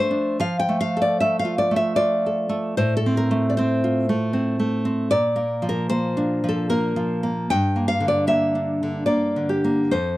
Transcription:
Already playing: F3 A3
0.00 C5
0.11 D4
0.40 F3 F5
0.59 G5
0.69 A3
0.81 F5
0.97 A4
1.02 D5
1.20 A3 E5
1.39 F5
1.45 F4
1.58 D5
1.71 A3
1.76 E5
1.96 F4 D5
2.26 A4
2.49 A3
2.77 A2 C5
2.97 A4
3.06 C4
3.17 A#4
3.31 A3
3.50 D5
3.57 C4 C5
3.84 F4
4.09 A3
4.33 C4
4.60 A3
4.85 C4
5.11 A#2 D5
5.36 A#3
5.62 F3
5.69 A#4
5.89 A#3 C5
6.17 D4
6.44 F3
6.49 A4
6.70 A#3 A#4
6.96 F3
7.23 A#3
7.50 G2 G5
7.76 A#3
7.88 F5
8.00 D3
8.08 D5
8.27 A#3 E5
8.55 D4
8.83 D3
9.06 A#3 D5
9.36 D3
9.49 G4
9.64 A#3
9.91 F2 C5

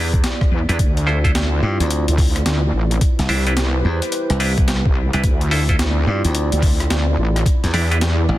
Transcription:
Already playing: E2 B3 E4 G4 D5
0.13 kick, closed hi-hat
0.24 snare, closed hi-hat
0.41 kick, cross-stick
0.51 E2
0.69 E2 D4 E4 G4 B4, closed hi-hat
0.79 D2 C4 E4 F4, kick, closed hi-hat
0.97 closed hi-hat
1.07 E4 F4 A4 C5, cross-stick
1.24 E4 F4 A4 C5, kick, closed hi-hat
1.35 snare, closed hi-hat
1.63 G2
1.80 D2, closed hi-hat
1.91 closed hi-hat
2.08 D2, closed hi-hat
2.18 kick, open hi-hat
2.36 cross-stick, closed hi-hat
2.46 D2, snare, closed hi-hat
2.74 A1
2.91 closed hi-hat
3.01 G4 B4 C5, kick, closed hi-hat
3.19 C2, snare, closed hi-hat
3.29 C2 D4 E4 G4 C5, cross-stick, open hi-hat
3.47 D4 E4 G4 B4, closed hi-hat
3.57 snare, closed hi-hat
3.85 E2
4.02 closed hi-hat
4.12 closed hi-hat
4.30 C2, cross-stick, closed hi-hat
4.40 D4 E4 G4 B4, open hi-hat
4.58 kick, closed hi-hat
4.68 snare, closed hi-hat
4.77 cross-stick
4.86 C2, kick
5.13 C2 D4 E4 G4 B4, closed hi-hat
5.24 D2 C4 F4 D5, kick, closed hi-hat
5.41 closed hi-hat
5.51 E4 F4 A4 C5, cross-stick, open hi-hat
5.69 E4 F4 A4 C5, kick, closed hi-hat
5.79 snare, closed hi-hat
6.07 G2
6.25 D2, closed hi-hat
6.35 closed hi-hat
6.52 D2, closed hi-hat
6.62 kick, open hi-hat
6.80 cross-stick, closed hi-hat
6.90 D2, snare, closed hi-hat
7.18 A1
7.36 cross-stick, closed hi-hat
7.46 B3 G4 D5, kick, closed hi-hat
7.64 E2, snare, closed hi-hat
7.74 E2 D4 E4 G4 D5, cross-stick, open hi-hat
7.91 D4 E4 G4 B4, closed hi-hat
8.01 snare, closed hi-hat
8.29 A1

